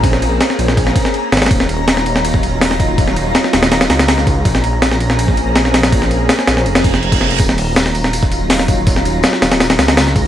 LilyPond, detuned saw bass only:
\new Staff \with { instrumentName = "Detuned saw bass" } { \clef bass \time 4/4 \key ees \dorian \tempo 4 = 163 bes,,4 r8 bes,,4 r4 aes,,8 | ees,,4. ees,,2~ ees,,8~ | ees,,4 r8 ees,,4 des,8. des,16 des,8 | bes,,4. bes,,2~ bes,,8~ |
bes,,4 r8 bes,,8 f,,4 f,,4 | ees,,4. ees,,2~ ees,,8~ | ees,,4 r8 ees,,4 des,8. des,16 des,8 | }